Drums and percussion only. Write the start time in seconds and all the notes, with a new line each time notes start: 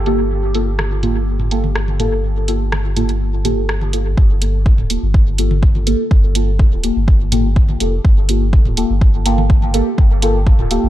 0.06 closed hi-hat
0.55 closed hi-hat
0.79 cross-stick, high tom
1.03 closed hi-hat, mid tom
1.40 mid tom
1.51 closed hi-hat
1.64 high tom
1.75 cross-stick
1.88 high tom
2.00 closed hi-hat, mid tom
2.48 closed hi-hat
2.72 cross-stick, high tom
2.97 closed hi-hat, mid tom
3.09 closed hi-hat
3.45 closed hi-hat, mid tom, high tom
3.69 cross-stick
3.81 high tom
3.93 closed hi-hat
4.17 kick
4.42 closed hi-hat
4.66 kick, high tom
4.78 mid tom
4.90 closed hi-hat
5.14 kick
5.38 closed hi-hat
5.51 high tom
5.63 kick
5.75 high tom
5.87 closed hi-hat
6.11 kick
6.35 closed hi-hat
6.59 kick, high tom
6.84 closed hi-hat
7.08 kick
7.32 closed hi-hat, mid tom, high tom
7.56 kick
7.69 high tom
7.80 closed hi-hat
8.05 kick
8.29 closed hi-hat
8.53 kick, high tom
8.65 mid tom
8.77 closed hi-hat
9.01 kick
9.26 closed hi-hat
9.38 high tom
9.50 kick
9.62 high tom
9.74 closed hi-hat
9.98 kick
10.22 closed hi-hat
10.47 kick, high tom
10.59 mid tom
10.71 closed hi-hat